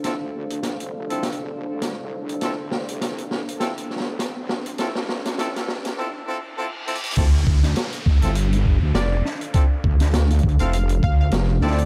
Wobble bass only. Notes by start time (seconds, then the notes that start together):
0.21 D2
0.34 D2
0.80 F1
1.41 E1
1.69 D2
1.99 C2
2.42 D2
2.88 C2
3.31 C2
4.07 D2
4.37 D2
4.96 D2
5.09 D2
5.56 F1
7.17 D2
7.47 D2
8.06 D2
8.23 G1
8.82 D2
8.94 F1
9.84 D2
10.44 D2
10.60 F1
11.03 D2
11.32 F1
11.62 D2